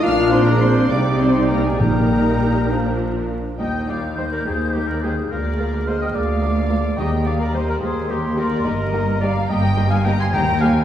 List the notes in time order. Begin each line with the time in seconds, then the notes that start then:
0.02 A#1 A#2 A#3 D4 F4 D5 F5 F6
0.31 C4 C5 C6
0.45 G#3 A#3 A#4 A#5
0.58 C4 C5 C6
0.89 C2 C3 G3 D4 D#4 D5 D6
1.19 C4 C5 C6
1.49 A#3 A#4 A#5
1.65 G#3 G#4 G#5
1.69 G#4
1.79 A#1 A#2 G3 A#3 D#4 A#4 G5 A#5
1.84 A#4
2.71 F3 D4
3.59 D#2 G3 A#3 D#4 G4 D#5 G5 G6
3.87 G3 A#3 D#4 G4 D5 F5
4.17 G3 A#3 D#4 G4 C5 D#5
4.32 A#4 D5
4.45 D#2 G3 A#3 D#4 G4 G#4 C5
4.73 G3 A#3 D#4 G4 A#4
4.87 A#4 D5
5.03 G3 A#3 D#4 G4 G#4 C5
5.30 D2 G#3 A#3 F4 G#4 A#4 D5 F6
5.60 G#3 A#3 F4 A#4
5.87 G#3 A#3 F4 A#4 C5 D#5
6.01 D#5 G5
6.14 D2 G#3 A#3 F4 A#4 D5 F5 D6
6.41 G#3 A#3 F4 A#4
6.69 G#3 A#3 F4 A#4
6.97 D#2 D#3 G3 A#3 D#4 G4 D#5 G5 A#5
7.25 G3 A#3 D#4 G4 D5 F5
7.41 A#4 D5
7.53 G3 A#3 D#4 G4 C5 D#5
7.67 A#4 D5
7.80 D#2 G3 A#3 D#4 G4 G#4 C5 C6
7.86 G#4
8.09 G3 A#3 D#4 G4 A#4
8.37 G3 A#3 D#4 G4 A#4 D5
8.63 G1 G2 G3 A#3 D#4 G4 A#4 D#5 A#5
8.93 G3 A#3 D#4 G4
9.21 G3 A#3 D#4 G4 D5 F5
9.49 G1 G2 G3 A#3 D#4 G4 D#5 G5
9.77 G3 A#3 D#4 G4
9.90 F5 G#5
10.05 G3 A#3 D#4 G4 G5 A#5
10.20 G#5 C6
10.33 D#2 D#3 G3 A#3 D#4 G4 G5 A#5
10.60 G3 A#3 D#4 G4 F5 G#5